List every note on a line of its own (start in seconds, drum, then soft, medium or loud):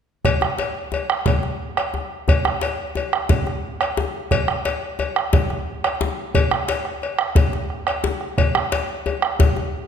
0.25 bombo rim soft
0.25 bombo low medium
0.25 cowbell medium
0.25 djembe slap soft
0.25 djembe bass medium
0.41 bombo rim medium
0.41 djembe slap soft
0.41 djembe tone soft
0.58 cowbell soft
0.58 djembe slap medium
0.92 cowbell soft
0.92 djembe tone medium
1.10 bombo rim medium
1.26 bombo low loud
1.26 cowbell soft
1.26 djembe slap medium
1.26 djembe bass medium
1.43 bombo rim soft
1.43 djembe tone soft
1.77 bombo rim medium
1.77 cowbell soft
1.94 bombo rim soft
1.94 djembe tone medium
2.28 bombo rim soft
2.28 bombo low medium
2.28 cowbell medium
2.28 djembe slap soft
2.28 djembe bass medium
2.45 bombo rim medium
2.45 djembe slap soft
2.45 djembe tone medium
2.61 cowbell medium
2.61 djembe slap medium
2.95 cowbell soft
2.95 djembe tone medium
3.13 bombo rim medium
3.29 bombo low loud
3.29 cowbell soft
3.29 djembe slap medium
3.29 djembe bass medium
3.47 bombo rim soft
3.47 djembe tone medium
3.81 bombo rim medium
3.81 cowbell soft
3.97 bombo rim soft
3.97 djembe slap medium
3.97 djembe tone medium
4.31 bombo rim soft
4.31 bombo low medium
4.31 cowbell medium
4.31 djembe slap soft
4.31 djembe bass medium
4.48 bombo rim medium
4.48 djembe slap soft
4.48 djembe tone soft
4.65 cowbell medium
4.65 djembe slap medium
4.99 cowbell soft
4.99 djembe tone medium
5.16 bombo rim medium
5.33 bombo low medium
5.33 cowbell soft
5.33 djembe slap medium
5.33 djembe bass medium
5.50 bombo rim soft
5.50 djembe tone medium
5.84 bombo rim medium
5.84 cowbell soft
6.01 bombo rim soft
6.01 djembe slap medium
6.01 djembe tone medium
6.34 bombo low medium
6.34 cowbell medium
6.34 djembe bass medium
6.51 bombo rim medium
6.51 djembe slap soft
6.51 djembe tone soft
6.68 bombo rim soft
6.68 cowbell medium
6.68 djembe slap medium
6.85 bombo rim soft
6.85 djembe slap soft
7.02 cowbell soft
7.02 djembe slap soft
7.19 bombo rim medium
7.35 bombo low loud
7.35 cowbell soft
7.35 djembe slap medium
7.35 djembe bass medium
7.53 bombo rim soft
7.53 djembe tone medium
7.70 bombo rim soft
7.87 bombo rim medium
7.87 cowbell soft
8.04 bombo rim soft
8.04 djembe slap medium
8.04 djembe tone medium
8.21 bombo rim soft
8.38 bombo rim soft
8.38 bombo low medium
8.38 cowbell medium
8.38 djembe slap soft
8.38 djembe bass medium
8.55 bombo rim medium
8.55 djembe slap soft
8.55 djembe tone medium
8.72 cowbell medium
8.72 djembe slap medium
9.06 cowbell soft
9.06 djembe tone medium
9.22 bombo rim medium
9.39 bombo low medium
9.39 cowbell soft
9.39 djembe slap medium
9.39 djembe bass medium
9.56 bombo rim soft
9.56 djembe tone medium